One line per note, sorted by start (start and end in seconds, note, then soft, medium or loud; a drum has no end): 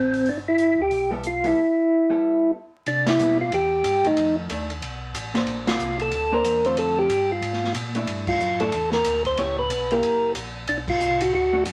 0.00 0.23 A1 medium
0.00 0.29 C4 medium
0.14 open hi-hat soft
0.26 0.75 G1 medium
0.26 0.37 D4 medium
0.26 open hi-hat soft
0.48 0.81 E4 loud
0.58 closed hi-hat medium
0.78 0.90 D2 medium
0.78 1.11 G4 medium
0.91 1.53 B1 medium
0.91 open hi-hat soft
1.11 1.22 G3 medium
1.11 1.23 B3 medium
1.11 1.23 E4 medium
1.11 1.23 A4 medium
1.23 1.46 F4 medium
1.23 closed hi-hat medium
1.44 1.55 G3 medium
1.44 1.55 B3 medium
1.44 1.56 E4 medium
1.44 2.51 E4 medium
1.44 1.56 A4 medium
1.44 open hi-hat soft
2.10 2.52 G3 soft
2.10 2.52 B3 medium
2.10 2.52 E4 medium
2.10 2.53 A4 medium
2.86 3.18 C3 medium
2.86 3.08 D4 medium
2.86 ride medium
3.06 3.38 E4 medium
3.06 snare medium
3.06 ride medium
3.19 3.51 B2 medium
3.19 3.38 G3 medium
3.19 3.38 B3 medium
3.19 3.38 E4 medium
3.19 hi-hat pedal medium
3.41 3.53 F4 medium
3.52 3.83 E2 medium
3.52 4.07 G4 loud
3.52 ride medium
3.84 4.03 G2 medium
3.84 hi-hat pedal medium
3.84 ride medium
4.04 4.10 G2 soft
4.04 4.47 D#3 medium
4.04 4.47 A3 medium
4.04 4.36 D#4 loud
4.04 ride soft
4.16 4.48 F2 medium
4.16 ride medium
4.49 4.81 D#2 medium
4.49 4.68 D#3 medium
4.49 4.68 A3 medium
4.49 4.68 D4 medium
4.49 hi-hat pedal medium
4.49 ride medium
4.70 ride soft
4.82 5.13 B1 medium
4.82 ride medium
5.13 5.45 A1 medium
5.13 hi-hat pedal medium
5.13 ride medium
5.34 5.77 A#3 medium
5.34 5.77 D4 medium
5.34 5.77 A4 medium
5.34 5.77 C5 medium
5.34 snare medium
5.34 ride soft
5.47 5.78 A#1 medium
5.47 ride medium
5.67 5.98 F4 medium
5.67 snare medium
5.67 ride medium
5.79 6.11 C2 medium
5.79 hi-hat pedal medium
5.99 6.34 A4 medium
5.99 ride soft
6.11 6.43 D2 medium
6.11 ride medium
6.32 6.63 A#3 medium
6.32 6.63 D4 medium
6.32 6.66 A#4 loud
6.32 6.63 C5 medium
6.44 6.76 E2 medium
6.44 hi-hat pedal medium
6.44 ride medium
6.65 7.07 D3 medium
6.65 7.08 A3 medium
6.65 7.08 C4 medium
6.65 7.08 F4 medium
6.65 6.78 C5 loud
6.65 ride soft
6.76 7.08 F2 medium
6.76 6.99 A4 medium
6.76 ride medium
6.99 7.31 G4 loud
7.09 7.41 G2 medium
7.09 hi-hat pedal medium
7.09 ride medium
7.32 7.73 F4 medium
7.42 7.73 G#2 medium
7.42 ride medium
7.53 snare soft
7.64 snare soft
7.74 8.06 A#2 medium
7.74 hi-hat pedal medium
7.74 ride medium
7.95 8.37 A3 medium
7.95 8.38 D4 medium
7.95 8.38 E4 medium
7.95 ride soft
8.07 8.39 G2 medium
8.07 ride medium
8.27 8.61 F4 medium
8.27 kick medium
8.27 crash medium
8.40 8.72 F#2 medium
8.40 hi-hat pedal medium
8.60 8.71 A3 medium
8.60 8.72 D4 medium
8.60 8.72 E4 medium
8.60 8.90 A4 medium
8.60 ride soft
8.72 9.03 E2 medium
8.72 ride medium
8.92 9.23 A#4 loud
8.92 snare medium
9.04 9.36 D2 medium
9.04 hi-hat pedal medium
9.04 ride medium
9.25 9.38 C5 loud
9.25 kick soft
9.25 ride soft
9.37 9.69 C#2 medium
9.37 9.56 B3 medium
9.37 9.56 E4 medium
9.37 9.56 G4 medium
9.37 9.57 C#5 medium
9.37 ride medium
9.59 9.92 B4 loud
9.70 10.01 B1 medium
9.70 hi-hat pedal medium
9.70 ride medium
9.91 10.33 A#3 medium
9.91 10.33 E4 medium
9.91 10.33 G4 medium
9.91 10.32 A#4 medium
9.91 ride soft
10.02 10.34 F#1 medium
10.02 ride medium
10.35 10.67 A#1 medium
10.35 hi-hat pedal medium
10.35 ride medium
10.67 10.99 B1 medium
10.67 10.77 D4 medium
10.67 ride medium
10.88 11.22 F4 medium
10.88 kick medium
10.88 crash medium
11.00 11.32 C2 medium
11.00 hi-hat pedal medium
11.21 11.33 F#4 medium
11.21 ride medium
11.33 11.64 D2 medium
11.33 11.64 F#4 loud
11.53 11.64 A3 medium
11.53 11.64 D4 medium
11.53 11.64 F#4 medium
11.65 11.72 F#2 medium
11.65 hi-hat pedal medium
11.65 ride medium